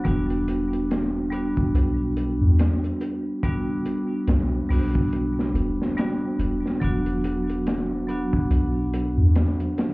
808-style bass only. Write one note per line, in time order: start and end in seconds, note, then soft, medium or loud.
0.05 1.71 E1 medium
1.74 2.37 B1 medium
2.41 2.57 E2 medium
4.28 4.50 B1 medium
4.70 5.51 B1 medium
5.54 5.76 E1 medium
6.39 6.61 E1 medium
6.82 8.47 E1 medium
8.50 9.13 B1 medium
9.17 9.33 E2 medium